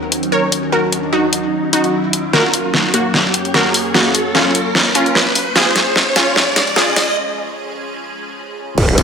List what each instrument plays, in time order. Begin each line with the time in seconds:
Already playing: ambient pad D#2 D#3 F#3 C#4 D#4, synth pluck F#4 A#4, riser
0.12 closed hi-hat
0.23 closed hi-hat
0.32 synth pluck A#4 C#5
0.52 closed hi-hat
0.72 synth pluck F#4 A#4
0.92 closed hi-hat
1.13 synth pluck D#4 F#4
1.33 closed hi-hat
1.73 synth pluck D#4 F#4, closed hi-hat
1.84 closed hi-hat
2.13 closed hi-hat
2.33 ambient pad F#2 A#3 C#5, synth pluck F#4 A#4, snare
2.54 closed hi-hat
2.74 snare
2.94 synth pluck A#3 F#4, closed hi-hat
3.14 snare
3.34 closed hi-hat
3.45 closed hi-hat
3.54 synth pluck F#4 A#4, snare
3.74 open hi-hat
3.94 synth pluck A#3 F#4, snare
4.15 closed hi-hat
4.35 synth pluck C#4 F4, snare
4.55 closed hi-hat
4.75 snare
4.95 synth pluck C#4 F4, closed hi-hat
5.06 closed hi-hat
5.15 snare
5.35 open hi-hat
5.56 ambient pad F2 F3 G#3 C#4 G#4, synth pluck F4 G#4, snare
5.76 snare, closed hi-hat
5.96 snare
6.16 synth pluck C#4 F4, snare, closed hi-hat
6.36 snare
6.56 snare, closed hi-hat
6.67 closed hi-hat
6.76 synth pluck F4 G#4, snare
6.96 snare, open hi-hat
8.78 wobble bass D#1, ambient pad D#3 F#3 A#3, kick, crash, impact
8.89 finger snap
8.98 detuned saw bass D#1, closed hi-hat